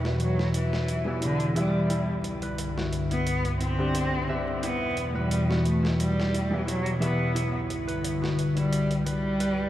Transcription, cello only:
0, 0, Header, 1, 2, 480
1, 0, Start_track
1, 0, Key_signature, 1, "minor"
1, 0, Tempo, 681818
1, 1338, Time_signature, 4, 2, 24, 8
1, 6825, End_track
2, 0, Start_track
2, 0, Title_t, "Cello"
2, 0, Program_c, 0, 42
2, 0, Note_on_c, 0, 52, 70
2, 109, Note_off_c, 0, 52, 0
2, 153, Note_on_c, 0, 54, 72
2, 363, Note_off_c, 0, 54, 0
2, 392, Note_on_c, 0, 52, 75
2, 820, Note_off_c, 0, 52, 0
2, 872, Note_on_c, 0, 50, 85
2, 1082, Note_off_c, 0, 50, 0
2, 1109, Note_on_c, 0, 55, 80
2, 1433, Note_off_c, 0, 55, 0
2, 2192, Note_on_c, 0, 59, 85
2, 2507, Note_off_c, 0, 59, 0
2, 2544, Note_on_c, 0, 60, 83
2, 3171, Note_off_c, 0, 60, 0
2, 3267, Note_on_c, 0, 59, 88
2, 3592, Note_off_c, 0, 59, 0
2, 3640, Note_on_c, 0, 55, 75
2, 3951, Note_off_c, 0, 55, 0
2, 3986, Note_on_c, 0, 57, 76
2, 4199, Note_off_c, 0, 57, 0
2, 4224, Note_on_c, 0, 55, 86
2, 4656, Note_off_c, 0, 55, 0
2, 4704, Note_on_c, 0, 54, 86
2, 4918, Note_off_c, 0, 54, 0
2, 4943, Note_on_c, 0, 59, 80
2, 5270, Note_off_c, 0, 59, 0
2, 6028, Note_on_c, 0, 55, 85
2, 6345, Note_off_c, 0, 55, 0
2, 6390, Note_on_c, 0, 55, 88
2, 6825, Note_off_c, 0, 55, 0
2, 6825, End_track
0, 0, End_of_file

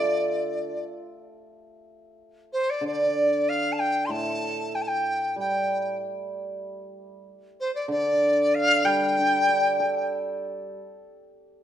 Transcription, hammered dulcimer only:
0, 0, Header, 1, 2, 480
1, 0, Start_track
1, 0, Tempo, 671892
1, 1098, Time_signature, 4, 2, 24, 8
1, 1098, Tempo, 646552
1, 2058, Tempo, 632244
1, 7338, Tempo, 645161
1, 8715, End_track
2, 0, Start_track
2, 0, Title_t, "Hammered dulcimer"
2, 0, Program_c, 0, 15
2, 0, Note_on_c, 0, 50, 54
2, 0, Note_on_c, 0, 57, 44
2, 0, Note_on_c, 0, 62, 41
2, 0, Note_on_c, 0, 65, 45
2, 15, Note_on_c, 0, 69, 36
2, 240, Note_off_c, 0, 57, 0
2, 477, Note_off_c, 0, 50, 0
2, 483, Note_off_c, 0, 62, 0
2, 727, Note_off_c, 0, 65, 0
2, 972, Note_off_c, 0, 69, 0
2, 2044, Note_on_c, 0, 50, 57
2, 3013, Note_on_c, 0, 45, 55
2, 3502, Note_off_c, 0, 50, 0
2, 3980, Note_on_c, 0, 55, 50
2, 4463, Note_off_c, 0, 45, 0
2, 5415, Note_off_c, 0, 55, 0
2, 5893, Note_on_c, 0, 50, 65
2, 6624, Note_on_c, 0, 55, 64
2, 6881, Note_on_c, 0, 62, 48
2, 7114, Note_on_c, 0, 67, 39
2, 7338, Note_off_c, 0, 50, 0
2, 7347, Note_on_c, 0, 69, 52
2, 7826, Note_off_c, 0, 62, 0
2, 8057, Note_off_c, 0, 55, 0
2, 8062, Note_off_c, 0, 67, 0
2, 8300, Note_off_c, 0, 69, 0
2, 8715, End_track
0, 0, End_of_file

